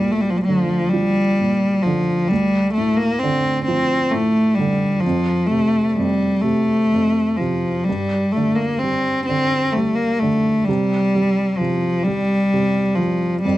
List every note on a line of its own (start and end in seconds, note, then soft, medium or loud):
0.00 2.27 D2 soft
0.00 1.39 A#2 soft
0.00 0.13 G3 medium
0.12 0.22 A3 medium
0.21 0.32 G3 medium
0.31 0.39 F3 medium
0.37 0.43 G3 medium
0.44 1.85 D3 soft
0.44 0.91 F3 medium
0.90 2.27 F3 soft
0.90 1.84 G3 medium
1.40 2.29 A#2 soft
1.83 2.30 D3 soft
1.83 2.30 F3 medium
2.28 5.01 D2 soft
2.28 2.73 G3 medium
2.74 2.98 A3 medium
2.78 4.11 A2 soft
2.97 3.21 A#3 medium
3.19 3.64 C4 medium
3.23 4.57 D3 soft
3.65 5.00 F3 soft
3.65 4.12 C4 medium
4.11 5.01 A2 soft
4.11 4.57 A3 medium
4.55 5.03 D3 soft
4.55 5.02 G3 medium
5.00 5.48 F3 medium
5.06 5.96 F2 soft
5.47 5.89 A3 medium
5.51 6.42 C3 soft
5.89 6.43 G3 medium
5.89 5.93 A3 soft
5.98 6.91 F2 soft
6.41 7.39 C3 soft
6.41 7.39 A3 medium
6.93 7.85 F2 soft
7.37 7.87 C3 soft
7.37 7.86 F3 medium
7.84 8.34 G3 medium
7.89 10.65 G2 soft
8.32 8.56 A3 medium
8.36 9.27 D3 soft
8.55 8.80 A#3 medium
8.79 9.26 C4 medium
8.83 9.75 G3 soft
9.26 10.21 D3 soft
9.26 9.74 C4 medium
9.72 9.96 A3 medium
9.77 10.66 G3 soft
9.95 10.20 A#3 medium
10.19 10.67 D3 soft
10.19 10.66 A3 medium
10.65 11.59 C3 soft
10.65 11.59 G3 medium
11.15 12.06 G3 soft
11.58 12.52 C3 soft
11.58 12.05 F3 medium
12.03 12.97 G3 medium
12.03 12.97 G3 soft
12.53 13.42 C3 soft
12.95 13.41 F3 medium
12.95 13.43 G3 soft
13.42 13.58 F2 soft
13.42 13.58 G3 medium